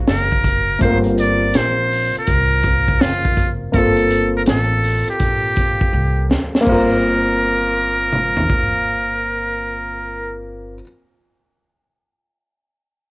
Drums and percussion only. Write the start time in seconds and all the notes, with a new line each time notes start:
0.08 snare, closed hi-hat
0.32 kick
0.45 kick, closed hi-hat
0.81 kick, closed hi-hat
1.04 closed hi-hat
1.18 closed hi-hat
1.54 snare, closed hi-hat
1.92 open hi-hat
2.15 closed hi-hat
2.27 kick, closed hi-hat
2.63 kick, closed hi-hat
2.88 kick
3.01 snare, closed hi-hat
3.25 kick
3.37 kick, closed hi-hat
3.73 kick, closed hi-hat
3.97 closed hi-hat
4.11 closed hi-hat
4.46 snare, closed hi-hat
4.84 open hi-hat
5.08 closed hi-hat
5.19 kick, closed hi-hat
5.56 kick, closed hi-hat
5.81 kick
6.31 snare
6.55 snare
6.66 kick, crash
8.12 mid tom
8.37 floor tom
8.50 kick